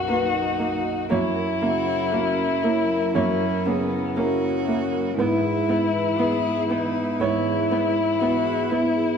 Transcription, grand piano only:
0, 0, Header, 1, 2, 480
1, 0, Start_track
1, 0, Tempo, 1013514
1, 524, Time_signature, 4, 2, 24, 8
1, 4345, End_track
2, 0, Start_track
2, 0, Title_t, "Grand piano"
2, 0, Program_c, 0, 0
2, 0, Control_c, 0, 64, 127
2, 0, Note_on_c, 0, 35, 48
2, 0, Note_on_c, 0, 42, 47
2, 0, Note_on_c, 0, 58, 43
2, 0, Note_on_c, 0, 66, 51
2, 0, Note_on_c, 0, 75, 81
2, 0, Note_on_c, 0, 76, 97
2, 41, Note_off_c, 0, 58, 0
2, 41, Note_on_c, 0, 58, 48
2, 44, Note_on_c, 0, 63, 42
2, 46, Note_off_c, 0, 66, 0
2, 46, Note_on_c, 0, 66, 48
2, 186, Note_off_c, 0, 42, 0
2, 264, Note_off_c, 0, 58, 0
2, 265, Note_off_c, 0, 63, 0
2, 266, Note_off_c, 0, 66, 0
2, 285, Note_on_c, 0, 58, 45
2, 504, Note_off_c, 0, 35, 0
2, 504, Note_off_c, 0, 75, 0
2, 524, Note_on_c, 0, 73, 92
2, 525, Note_off_c, 0, 58, 0
2, 529, Note_on_c, 0, 42, 61
2, 533, Note_off_c, 0, 76, 0
2, 533, Control_c, 0, 64, 0
2, 617, Control_c, 0, 64, 127
2, 769, Note_on_c, 0, 49, 47
2, 1008, Note_on_c, 0, 58, 50
2, 1013, Note_on_c, 0, 64, 49
2, 1013, Note_on_c, 0, 66, 51
2, 1151, Note_off_c, 0, 49, 0
2, 1229, Note_off_c, 0, 58, 0
2, 1231, Note_off_c, 0, 64, 0
2, 1231, Note_off_c, 0, 66, 0
2, 1252, Note_on_c, 0, 58, 50
2, 1471, Note_off_c, 0, 73, 0
2, 1473, Note_off_c, 0, 42, 0
2, 1492, Note_on_c, 0, 73, 89
2, 1493, Note_on_c, 0, 42, 53
2, 1638, Note_off_c, 0, 58, 0
2, 1716, Note_off_c, 0, 73, 0
2, 1734, Note_on_c, 0, 49, 44
2, 1740, Note_on_c, 0, 68, 71
2, 1958, Note_off_c, 0, 68, 0
2, 1977, Note_on_c, 0, 58, 42
2, 1977, Note_on_c, 0, 64, 42
2, 1978, Note_on_c, 0, 70, 68
2, 1979, Note_on_c, 0, 66, 52
2, 2114, Note_off_c, 0, 49, 0
2, 2193, Note_off_c, 0, 58, 0
2, 2193, Note_off_c, 0, 64, 0
2, 2194, Note_off_c, 0, 66, 0
2, 2216, Note_on_c, 0, 58, 49
2, 2432, Note_off_c, 0, 42, 0
2, 2434, Note_off_c, 0, 70, 0
2, 2450, Note_on_c, 0, 44, 66
2, 2452, Note_off_c, 0, 58, 0
2, 2456, Note_on_c, 0, 71, 84
2, 2457, Control_c, 0, 64, 0
2, 2523, Control_c, 0, 64, 127
2, 2690, Note_on_c, 0, 56, 49
2, 2929, Note_off_c, 0, 71, 0
2, 2934, Note_on_c, 0, 59, 45
2, 2936, Note_on_c, 0, 64, 48
2, 2936, Note_on_c, 0, 71, 55
2, 3072, Note_off_c, 0, 56, 0
2, 3151, Note_off_c, 0, 59, 0
2, 3152, Note_off_c, 0, 64, 0
2, 3152, Note_off_c, 0, 71, 0
2, 3172, Note_on_c, 0, 59, 52
2, 3387, Note_off_c, 0, 44, 0
2, 3408, Note_on_c, 0, 44, 53
2, 3414, Note_on_c, 0, 73, 95
2, 3551, Note_off_c, 0, 59, 0
2, 3650, Note_on_c, 0, 56, 45
2, 3889, Note_on_c, 0, 59, 45
2, 3890, Note_on_c, 0, 64, 46
2, 3892, Note_on_c, 0, 71, 50
2, 4029, Note_off_c, 0, 56, 0
2, 4105, Note_off_c, 0, 59, 0
2, 4105, Note_off_c, 0, 64, 0
2, 4107, Note_off_c, 0, 71, 0
2, 4127, Note_on_c, 0, 59, 53
2, 4341, Note_off_c, 0, 44, 0
2, 4344, Note_off_c, 0, 73, 0
2, 4345, Note_off_c, 0, 59, 0
2, 4345, End_track
0, 0, End_of_file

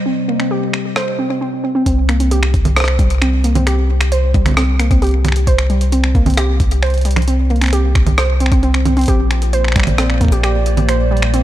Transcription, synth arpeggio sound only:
0, 0, Header, 1, 2, 480
1, 0, Start_track
1, 0, Key_signature, -3, "minor"
1, 0, Tempo, 451128
1, 62, Time_signature, 4, 2, 24, 8
1, 12163, End_track
2, 0, Start_track
2, 0, Title_t, "Synth arpeggio sound"
2, 0, Program_c, 0, 84
2, 62, Note_on_c, 0, 60, 79
2, 106, Note_off_c, 0, 60, 0
2, 302, Note_on_c, 0, 58, 78
2, 375, Note_off_c, 0, 58, 0
2, 422, Note_on_c, 0, 60, 71
2, 466, Note_off_c, 0, 60, 0
2, 542, Note_on_c, 0, 67, 95
2, 615, Note_off_c, 0, 67, 0
2, 1022, Note_on_c, 0, 72, 100
2, 1095, Note_off_c, 0, 72, 0
2, 1262, Note_on_c, 0, 60, 75
2, 1306, Note_off_c, 0, 60, 0
2, 1382, Note_on_c, 0, 60, 75
2, 1455, Note_off_c, 0, 60, 0
2, 1502, Note_on_c, 0, 60, 81
2, 1575, Note_off_c, 0, 60, 0
2, 1742, Note_on_c, 0, 60, 74
2, 1786, Note_off_c, 0, 60, 0
2, 1862, Note_on_c, 0, 60, 107
2, 1906, Note_off_c, 0, 60, 0
2, 1982, Note_on_c, 0, 60, 77
2, 2026, Note_off_c, 0, 60, 0
2, 2222, Note_on_c, 0, 58, 78
2, 2295, Note_off_c, 0, 58, 0
2, 2342, Note_on_c, 0, 60, 74
2, 2386, Note_off_c, 0, 60, 0
2, 2462, Note_on_c, 0, 67, 105
2, 2535, Note_off_c, 0, 67, 0
2, 2942, Note_on_c, 0, 72, 97
2, 3015, Note_off_c, 0, 72, 0
2, 3182, Note_on_c, 0, 55, 79
2, 3226, Note_off_c, 0, 55, 0
2, 3422, Note_on_c, 0, 60, 85
2, 3466, Note_off_c, 0, 60, 0
2, 3662, Note_on_c, 0, 58, 76
2, 3735, Note_off_c, 0, 58, 0
2, 3782, Note_on_c, 0, 60, 83
2, 3826, Note_off_c, 0, 60, 0
2, 3902, Note_on_c, 0, 67, 104
2, 3975, Note_off_c, 0, 67, 0
2, 4382, Note_on_c, 0, 72, 101
2, 4455, Note_off_c, 0, 72, 0
2, 4622, Note_on_c, 0, 55, 77
2, 4666, Note_off_c, 0, 55, 0
2, 4862, Note_on_c, 0, 60, 82
2, 4906, Note_off_c, 0, 60, 0
2, 5102, Note_on_c, 0, 58, 81
2, 5176, Note_off_c, 0, 58, 0
2, 5222, Note_on_c, 0, 60, 76
2, 5266, Note_off_c, 0, 60, 0
2, 5342, Note_on_c, 0, 67, 107
2, 5415, Note_off_c, 0, 67, 0
2, 5822, Note_on_c, 0, 72, 103
2, 5895, Note_off_c, 0, 72, 0
2, 6062, Note_on_c, 0, 55, 81
2, 6106, Note_off_c, 0, 55, 0
2, 6302, Note_on_c, 0, 60, 83
2, 6346, Note_off_c, 0, 60, 0
2, 6542, Note_on_c, 0, 58, 76
2, 6615, Note_off_c, 0, 58, 0
2, 6662, Note_on_c, 0, 60, 76
2, 6706, Note_off_c, 0, 60, 0
2, 6782, Note_on_c, 0, 67, 100
2, 6855, Note_off_c, 0, 67, 0
2, 7262, Note_on_c, 0, 72, 103
2, 7335, Note_off_c, 0, 72, 0
2, 7502, Note_on_c, 0, 55, 73
2, 7546, Note_off_c, 0, 55, 0
2, 7742, Note_on_c, 0, 60, 79
2, 7786, Note_off_c, 0, 60, 0
2, 7982, Note_on_c, 0, 58, 82
2, 8055, Note_off_c, 0, 58, 0
2, 8102, Note_on_c, 0, 60, 76
2, 8146, Note_off_c, 0, 60, 0
2, 8222, Note_on_c, 0, 67, 107
2, 8295, Note_off_c, 0, 67, 0
2, 8702, Note_on_c, 0, 72, 97
2, 8775, Note_off_c, 0, 72, 0
2, 8942, Note_on_c, 0, 60, 80
2, 8986, Note_off_c, 0, 60, 0
2, 9063, Note_on_c, 0, 60, 76
2, 9136, Note_off_c, 0, 60, 0
2, 9182, Note_on_c, 0, 60, 85
2, 9256, Note_off_c, 0, 60, 0
2, 9422, Note_on_c, 0, 60, 77
2, 9466, Note_off_c, 0, 60, 0
2, 9542, Note_on_c, 0, 60, 110
2, 9586, Note_off_c, 0, 60, 0
2, 9662, Note_on_c, 0, 67, 98
2, 9735, Note_off_c, 0, 67, 0
2, 10142, Note_on_c, 0, 72, 100
2, 10215, Note_off_c, 0, 72, 0
2, 10382, Note_on_c, 0, 55, 79
2, 10426, Note_off_c, 0, 55, 0
2, 10622, Note_on_c, 0, 60, 83
2, 10666, Note_off_c, 0, 60, 0
2, 10862, Note_on_c, 0, 58, 79
2, 10935, Note_off_c, 0, 58, 0
2, 10982, Note_on_c, 0, 67, 79
2, 11026, Note_off_c, 0, 67, 0
2, 11102, Note_on_c, 0, 67, 105
2, 11175, Note_off_c, 0, 67, 0
2, 11582, Note_on_c, 0, 72, 100
2, 11655, Note_off_c, 0, 72, 0
2, 11822, Note_on_c, 0, 55, 80
2, 11866, Note_off_c, 0, 55, 0
2, 12062, Note_on_c, 0, 60, 84
2, 12106, Note_off_c, 0, 60, 0
2, 12163, End_track
0, 0, End_of_file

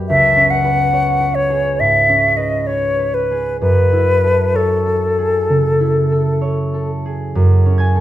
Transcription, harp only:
0, 0, Header, 1, 2, 480
1, 0, Start_track
1, 0, Key_signature, 3, "minor"
1, 0, Tempo, 832178
1, 48, Time_signature, 4, 2, 24, 8
1, 528, Tempo, 875912
1, 1488, Tempo, 943396
1, 3408, Tempo, 904977
1, 4237, End_track
2, 0, Start_track
2, 0, Title_t, "Harp"
2, 0, Program_c, 0, 46
2, 0, Note_on_c, 0, 42, 45
2, 0, Note_on_c, 0, 59, 37
2, 0, Note_on_c, 0, 66, 36
2, 0, Note_on_c, 0, 67, 35
2, 0, Note_on_c, 0, 71, 35
2, 0, Note_on_c, 0, 74, 40
2, 55, Note_on_c, 0, 37, 43
2, 66, Note_off_c, 0, 74, 0
2, 67, Note_off_c, 0, 42, 0
2, 67, Note_off_c, 0, 67, 0
2, 210, Note_on_c, 0, 61, 35
2, 362, Note_off_c, 0, 71, 0
2, 369, Note_on_c, 0, 71, 35
2, 537, Note_on_c, 0, 73, 36
2, 679, Note_off_c, 0, 71, 0
2, 686, Note_on_c, 0, 71, 35
2, 848, Note_on_c, 0, 68, 36
2, 1012, Note_on_c, 0, 44, 30
2, 1115, Note_off_c, 0, 66, 0
2, 1164, Note_off_c, 0, 61, 0
2, 1171, Note_on_c, 0, 61, 35
2, 1322, Note_off_c, 0, 71, 0
2, 1329, Note_on_c, 0, 71, 33
2, 1433, Note_off_c, 0, 59, 0
2, 1491, Note_off_c, 0, 73, 0
2, 1497, Note_on_c, 0, 73, 37
2, 1645, Note_off_c, 0, 71, 0
2, 1651, Note_on_c, 0, 71, 31
2, 1810, Note_off_c, 0, 68, 0
2, 1816, Note_on_c, 0, 68, 31
2, 1970, Note_on_c, 0, 42, 42
2, 1990, Note_off_c, 0, 37, 0
2, 1990, Note_off_c, 0, 71, 0
2, 1992, Note_off_c, 0, 44, 0
2, 2128, Note_on_c, 0, 64, 31
2, 2286, Note_on_c, 0, 69, 30
2, 2436, Note_off_c, 0, 73, 0
2, 2442, Note_on_c, 0, 73, 30
2, 2598, Note_off_c, 0, 69, 0
2, 2604, Note_on_c, 0, 69, 31
2, 2763, Note_off_c, 0, 68, 0
2, 2769, Note_on_c, 0, 68, 33
2, 2925, Note_on_c, 0, 49, 29
2, 3078, Note_off_c, 0, 64, 0
2, 3085, Note_on_c, 0, 64, 32
2, 3178, Note_off_c, 0, 61, 0
2, 3238, Note_off_c, 0, 69, 0
2, 3244, Note_on_c, 0, 69, 33
2, 3388, Note_off_c, 0, 73, 0
2, 3394, Note_on_c, 0, 73, 32
2, 3559, Note_off_c, 0, 69, 0
2, 3566, Note_on_c, 0, 69, 29
2, 3727, Note_off_c, 0, 68, 0
2, 3734, Note_on_c, 0, 68, 31
2, 3885, Note_off_c, 0, 42, 0
2, 3892, Note_on_c, 0, 42, 45
2, 3914, Note_off_c, 0, 64, 0
2, 3915, Note_off_c, 0, 49, 0
2, 4053, Note_on_c, 0, 61, 37
2, 4117, Note_on_c, 0, 92, 65
2, 4127, Note_on_c, 0, 80, 52
2, 4204, Note_off_c, 0, 69, 0
2, 4210, Note_on_c, 0, 69, 36
2, 4237, Note_off_c, 0, 42, 0
2, 4237, Note_off_c, 0, 61, 0
2, 4237, Note_off_c, 0, 68, 0
2, 4237, Note_off_c, 0, 69, 0
2, 4237, Note_off_c, 0, 73, 0
2, 4237, Note_off_c, 0, 80, 0
2, 4237, Note_off_c, 0, 92, 0
2, 4237, End_track
0, 0, End_of_file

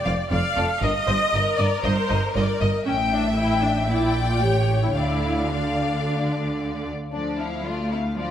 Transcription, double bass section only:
0, 0, Header, 1, 2, 480
1, 0, Start_track
1, 0, Key_signature, -1, "minor"
1, 0, Tempo, 511945
1, 768, Time_signature, 4, 2, 24, 8
1, 3650, Tempo, 540054
1, 6530, Tempo, 519931
1, 7614, End_track
2, 0, Start_track
2, 0, Title_t, "Double bass section"
2, 0, Program_c, 0, 48
2, 59, Note_on_c, 0, 29, 72
2, 134, Note_off_c, 0, 29, 0
2, 301, Note_on_c, 0, 29, 65
2, 376, Note_off_c, 0, 29, 0
2, 531, Note_on_c, 0, 29, 64
2, 606, Note_off_c, 0, 29, 0
2, 768, Note_on_c, 0, 31, 81
2, 843, Note_off_c, 0, 31, 0
2, 1010, Note_on_c, 0, 31, 60
2, 1085, Note_off_c, 0, 31, 0
2, 1249, Note_on_c, 0, 31, 64
2, 1324, Note_off_c, 0, 31, 0
2, 1485, Note_on_c, 0, 31, 57
2, 1560, Note_off_c, 0, 31, 0
2, 1728, Note_on_c, 0, 31, 69
2, 1803, Note_off_c, 0, 31, 0
2, 1974, Note_on_c, 0, 31, 63
2, 2049, Note_off_c, 0, 31, 0
2, 2209, Note_on_c, 0, 31, 67
2, 2284, Note_off_c, 0, 31, 0
2, 2445, Note_on_c, 0, 31, 58
2, 2520, Note_off_c, 0, 31, 0
2, 2686, Note_on_c, 0, 33, 68
2, 3615, Note_off_c, 0, 33, 0
2, 3647, Note_on_c, 0, 34, 59
2, 4117, Note_off_c, 0, 34, 0
2, 4122, Note_on_c, 0, 33, 53
2, 4590, Note_on_c, 0, 38, 59
2, 4597, Note_off_c, 0, 33, 0
2, 6313, Note_off_c, 0, 38, 0
2, 6537, Note_on_c, 0, 38, 42
2, 7614, Note_off_c, 0, 38, 0
2, 7614, End_track
0, 0, End_of_file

